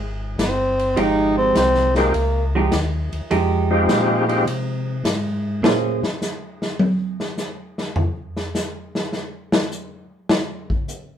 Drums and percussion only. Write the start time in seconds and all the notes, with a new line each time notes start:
0.39 snare, hi-hat pedal, ride
0.79 ride
0.97 ride
1.55 snare, hi-hat pedal, ride
1.75 snare
1.95 snare, ride
2.14 ride
2.72 snare, hi-hat pedal, ride
3.13 ride
3.31 ride
3.89 snare, hi-hat pedal, ride
4.29 ride
4.47 ride
5.05 snare, hi-hat pedal, ride
5.64 snare
6.03 snare
6.22 snare, hi-hat pedal
6.62 snare
6.79 high tom
7.20 snare
7.38 snare, hi-hat pedal
7.78 snare
7.96 floor tom
8.37 snare
8.55 snare, hi-hat pedal
8.95 snare
9.12 snare
9.52 snare
9.72 hi-hat pedal
10.29 snare
10.70 kick
10.88 hi-hat pedal